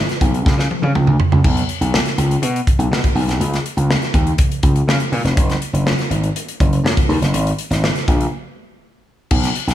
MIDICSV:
0, 0, Header, 1, 3, 480
1, 0, Start_track
1, 0, Tempo, 491803
1, 1405, Time_signature, 4, 2, 24, 8
1, 9506, End_track
2, 0, Start_track
2, 0, Title_t, "Slap bass"
2, 0, Program_c, 0, 36
2, 206, Note_on_c, 0, 35, 81
2, 378, Note_off_c, 0, 35, 0
2, 446, Note_on_c, 0, 37, 92
2, 532, Note_off_c, 0, 37, 0
2, 560, Note_on_c, 0, 49, 87
2, 648, Note_off_c, 0, 49, 0
2, 802, Note_on_c, 0, 49, 93
2, 890, Note_off_c, 0, 49, 0
2, 927, Note_on_c, 0, 37, 94
2, 1047, Note_off_c, 0, 37, 0
2, 1047, Note_on_c, 0, 38, 87
2, 1132, Note_off_c, 0, 38, 0
2, 1290, Note_on_c, 0, 37, 74
2, 1375, Note_off_c, 0, 37, 0
2, 1409, Note_on_c, 0, 35, 95
2, 1580, Note_off_c, 0, 35, 0
2, 1765, Note_on_c, 0, 35, 91
2, 1937, Note_off_c, 0, 35, 0
2, 2125, Note_on_c, 0, 37, 91
2, 2297, Note_off_c, 0, 37, 0
2, 2363, Note_on_c, 0, 47, 99
2, 2536, Note_off_c, 0, 47, 0
2, 2720, Note_on_c, 0, 35, 77
2, 2808, Note_off_c, 0, 35, 0
2, 2840, Note_on_c, 0, 47, 95
2, 2928, Note_off_c, 0, 47, 0
2, 3077, Note_on_c, 0, 35, 89
2, 3166, Note_off_c, 0, 35, 0
2, 3201, Note_on_c, 0, 35, 88
2, 3288, Note_off_c, 0, 35, 0
2, 3314, Note_on_c, 0, 37, 100
2, 3490, Note_off_c, 0, 37, 0
2, 3677, Note_on_c, 0, 37, 89
2, 3852, Note_off_c, 0, 37, 0
2, 4040, Note_on_c, 0, 39, 86
2, 4214, Note_off_c, 0, 39, 0
2, 4518, Note_on_c, 0, 37, 86
2, 4692, Note_off_c, 0, 37, 0
2, 4758, Note_on_c, 0, 49, 93
2, 4846, Note_off_c, 0, 49, 0
2, 4998, Note_on_c, 0, 46, 93
2, 5086, Note_off_c, 0, 46, 0
2, 5116, Note_on_c, 0, 29, 92
2, 5205, Note_off_c, 0, 29, 0
2, 5243, Note_on_c, 0, 30, 105
2, 5415, Note_off_c, 0, 30, 0
2, 5594, Note_on_c, 0, 30, 88
2, 5770, Note_off_c, 0, 30, 0
2, 5956, Note_on_c, 0, 32, 87
2, 6131, Note_off_c, 0, 32, 0
2, 6443, Note_on_c, 0, 30, 86
2, 6616, Note_off_c, 0, 30, 0
2, 6672, Note_on_c, 0, 42, 98
2, 6763, Note_off_c, 0, 42, 0
2, 6919, Note_on_c, 0, 39, 92
2, 7007, Note_off_c, 0, 39, 0
2, 7040, Note_on_c, 0, 30, 84
2, 7157, Note_off_c, 0, 30, 0
2, 7157, Note_on_c, 0, 32, 111
2, 7332, Note_off_c, 0, 32, 0
2, 7519, Note_on_c, 0, 32, 97
2, 7693, Note_off_c, 0, 32, 0
2, 7885, Note_on_c, 0, 34, 77
2, 8057, Note_off_c, 0, 34, 0
2, 9085, Note_on_c, 0, 35, 103
2, 9257, Note_off_c, 0, 35, 0
2, 9440, Note_on_c, 0, 35, 84
2, 9506, Note_off_c, 0, 35, 0
2, 9506, End_track
3, 0, Start_track
3, 0, Title_t, "Drums"
3, 88, Note_on_c, 9, 42, 42
3, 102, Note_on_c, 9, 38, 35
3, 186, Note_off_c, 9, 42, 0
3, 200, Note_off_c, 9, 38, 0
3, 206, Note_on_c, 9, 36, 92
3, 209, Note_on_c, 9, 42, 71
3, 304, Note_off_c, 9, 36, 0
3, 306, Note_off_c, 9, 42, 0
3, 335, Note_on_c, 9, 42, 50
3, 433, Note_off_c, 9, 42, 0
3, 450, Note_on_c, 9, 36, 105
3, 459, Note_on_c, 9, 38, 55
3, 548, Note_off_c, 9, 36, 0
3, 557, Note_off_c, 9, 38, 0
3, 579, Note_on_c, 9, 38, 48
3, 677, Note_off_c, 9, 38, 0
3, 693, Note_on_c, 9, 48, 62
3, 791, Note_off_c, 9, 48, 0
3, 813, Note_on_c, 9, 48, 62
3, 911, Note_off_c, 9, 48, 0
3, 931, Note_on_c, 9, 47, 80
3, 1028, Note_off_c, 9, 47, 0
3, 1047, Note_on_c, 9, 45, 68
3, 1145, Note_off_c, 9, 45, 0
3, 1168, Note_on_c, 9, 43, 84
3, 1265, Note_off_c, 9, 43, 0
3, 1290, Note_on_c, 9, 43, 79
3, 1387, Note_off_c, 9, 43, 0
3, 1410, Note_on_c, 9, 36, 104
3, 1410, Note_on_c, 9, 49, 85
3, 1507, Note_off_c, 9, 36, 0
3, 1508, Note_off_c, 9, 49, 0
3, 1532, Note_on_c, 9, 42, 52
3, 1630, Note_off_c, 9, 42, 0
3, 1649, Note_on_c, 9, 42, 67
3, 1747, Note_off_c, 9, 42, 0
3, 1773, Note_on_c, 9, 42, 52
3, 1871, Note_off_c, 9, 42, 0
3, 1893, Note_on_c, 9, 38, 101
3, 1991, Note_off_c, 9, 38, 0
3, 2006, Note_on_c, 9, 42, 42
3, 2020, Note_on_c, 9, 38, 33
3, 2104, Note_off_c, 9, 42, 0
3, 2117, Note_off_c, 9, 38, 0
3, 2131, Note_on_c, 9, 42, 75
3, 2228, Note_off_c, 9, 42, 0
3, 2256, Note_on_c, 9, 42, 51
3, 2354, Note_off_c, 9, 42, 0
3, 2370, Note_on_c, 9, 42, 97
3, 2468, Note_off_c, 9, 42, 0
3, 2499, Note_on_c, 9, 42, 50
3, 2596, Note_off_c, 9, 42, 0
3, 2609, Note_on_c, 9, 36, 86
3, 2612, Note_on_c, 9, 42, 67
3, 2706, Note_off_c, 9, 36, 0
3, 2710, Note_off_c, 9, 42, 0
3, 2731, Note_on_c, 9, 42, 53
3, 2828, Note_off_c, 9, 42, 0
3, 2860, Note_on_c, 9, 38, 112
3, 2958, Note_off_c, 9, 38, 0
3, 2968, Note_on_c, 9, 36, 90
3, 2968, Note_on_c, 9, 42, 54
3, 3065, Note_off_c, 9, 36, 0
3, 3065, Note_off_c, 9, 42, 0
3, 3089, Note_on_c, 9, 46, 74
3, 3186, Note_off_c, 9, 46, 0
3, 3210, Note_on_c, 9, 42, 54
3, 3217, Note_on_c, 9, 38, 35
3, 3308, Note_off_c, 9, 42, 0
3, 3314, Note_off_c, 9, 38, 0
3, 3329, Note_on_c, 9, 42, 79
3, 3426, Note_off_c, 9, 42, 0
3, 3451, Note_on_c, 9, 42, 50
3, 3458, Note_on_c, 9, 38, 32
3, 3549, Note_off_c, 9, 42, 0
3, 3556, Note_off_c, 9, 38, 0
3, 3570, Note_on_c, 9, 42, 70
3, 3668, Note_off_c, 9, 42, 0
3, 3687, Note_on_c, 9, 42, 54
3, 3784, Note_off_c, 9, 42, 0
3, 3812, Note_on_c, 9, 38, 110
3, 3909, Note_off_c, 9, 38, 0
3, 3921, Note_on_c, 9, 42, 41
3, 3935, Note_on_c, 9, 38, 34
3, 4019, Note_off_c, 9, 42, 0
3, 4033, Note_off_c, 9, 38, 0
3, 4041, Note_on_c, 9, 36, 88
3, 4041, Note_on_c, 9, 42, 72
3, 4138, Note_off_c, 9, 36, 0
3, 4139, Note_off_c, 9, 42, 0
3, 4165, Note_on_c, 9, 42, 52
3, 4263, Note_off_c, 9, 42, 0
3, 4278, Note_on_c, 9, 42, 99
3, 4282, Note_on_c, 9, 36, 110
3, 4376, Note_off_c, 9, 42, 0
3, 4380, Note_off_c, 9, 36, 0
3, 4407, Note_on_c, 9, 42, 55
3, 4505, Note_off_c, 9, 42, 0
3, 4518, Note_on_c, 9, 42, 66
3, 4521, Note_on_c, 9, 36, 92
3, 4615, Note_off_c, 9, 42, 0
3, 4618, Note_off_c, 9, 36, 0
3, 4643, Note_on_c, 9, 42, 55
3, 4740, Note_off_c, 9, 42, 0
3, 4770, Note_on_c, 9, 38, 105
3, 4868, Note_off_c, 9, 38, 0
3, 4880, Note_on_c, 9, 42, 51
3, 4977, Note_off_c, 9, 42, 0
3, 5003, Note_on_c, 9, 46, 77
3, 5101, Note_off_c, 9, 46, 0
3, 5129, Note_on_c, 9, 42, 51
3, 5136, Note_on_c, 9, 38, 36
3, 5227, Note_off_c, 9, 42, 0
3, 5233, Note_off_c, 9, 38, 0
3, 5243, Note_on_c, 9, 36, 110
3, 5243, Note_on_c, 9, 42, 86
3, 5341, Note_off_c, 9, 36, 0
3, 5341, Note_off_c, 9, 42, 0
3, 5364, Note_on_c, 9, 42, 51
3, 5371, Note_on_c, 9, 38, 31
3, 5462, Note_off_c, 9, 42, 0
3, 5469, Note_off_c, 9, 38, 0
3, 5484, Note_on_c, 9, 42, 70
3, 5581, Note_off_c, 9, 42, 0
3, 5608, Note_on_c, 9, 42, 53
3, 5706, Note_off_c, 9, 42, 0
3, 5726, Note_on_c, 9, 38, 114
3, 5824, Note_off_c, 9, 38, 0
3, 5841, Note_on_c, 9, 42, 42
3, 5855, Note_on_c, 9, 38, 36
3, 5939, Note_off_c, 9, 42, 0
3, 5953, Note_off_c, 9, 38, 0
3, 5965, Note_on_c, 9, 42, 71
3, 6063, Note_off_c, 9, 42, 0
3, 6086, Note_on_c, 9, 42, 50
3, 6183, Note_off_c, 9, 42, 0
3, 6207, Note_on_c, 9, 42, 102
3, 6305, Note_off_c, 9, 42, 0
3, 6329, Note_on_c, 9, 42, 57
3, 6427, Note_off_c, 9, 42, 0
3, 6445, Note_on_c, 9, 36, 92
3, 6449, Note_on_c, 9, 42, 68
3, 6542, Note_off_c, 9, 36, 0
3, 6546, Note_off_c, 9, 42, 0
3, 6567, Note_on_c, 9, 42, 56
3, 6665, Note_off_c, 9, 42, 0
3, 6695, Note_on_c, 9, 38, 116
3, 6793, Note_off_c, 9, 38, 0
3, 6804, Note_on_c, 9, 42, 51
3, 6805, Note_on_c, 9, 36, 94
3, 6901, Note_off_c, 9, 42, 0
3, 6903, Note_off_c, 9, 36, 0
3, 6930, Note_on_c, 9, 46, 80
3, 7028, Note_off_c, 9, 46, 0
3, 7051, Note_on_c, 9, 42, 55
3, 7057, Note_on_c, 9, 38, 34
3, 7149, Note_off_c, 9, 42, 0
3, 7155, Note_off_c, 9, 38, 0
3, 7165, Note_on_c, 9, 42, 87
3, 7262, Note_off_c, 9, 42, 0
3, 7289, Note_on_c, 9, 42, 54
3, 7387, Note_off_c, 9, 42, 0
3, 7403, Note_on_c, 9, 42, 69
3, 7501, Note_off_c, 9, 42, 0
3, 7529, Note_on_c, 9, 42, 56
3, 7537, Note_on_c, 9, 38, 34
3, 7627, Note_off_c, 9, 42, 0
3, 7634, Note_off_c, 9, 38, 0
3, 7650, Note_on_c, 9, 38, 112
3, 7748, Note_off_c, 9, 38, 0
3, 7765, Note_on_c, 9, 42, 42
3, 7778, Note_on_c, 9, 38, 36
3, 7862, Note_off_c, 9, 42, 0
3, 7876, Note_off_c, 9, 38, 0
3, 7885, Note_on_c, 9, 36, 101
3, 7888, Note_on_c, 9, 42, 75
3, 7983, Note_off_c, 9, 36, 0
3, 7985, Note_off_c, 9, 42, 0
3, 8009, Note_on_c, 9, 42, 53
3, 8107, Note_off_c, 9, 42, 0
3, 9083, Note_on_c, 9, 49, 97
3, 9087, Note_on_c, 9, 36, 109
3, 9181, Note_off_c, 9, 49, 0
3, 9185, Note_off_c, 9, 36, 0
3, 9208, Note_on_c, 9, 42, 55
3, 9215, Note_on_c, 9, 38, 31
3, 9306, Note_off_c, 9, 42, 0
3, 9313, Note_off_c, 9, 38, 0
3, 9325, Note_on_c, 9, 42, 71
3, 9423, Note_off_c, 9, 42, 0
3, 9452, Note_on_c, 9, 42, 54
3, 9460, Note_on_c, 9, 38, 35
3, 9506, Note_off_c, 9, 38, 0
3, 9506, Note_off_c, 9, 42, 0
3, 9506, End_track
0, 0, End_of_file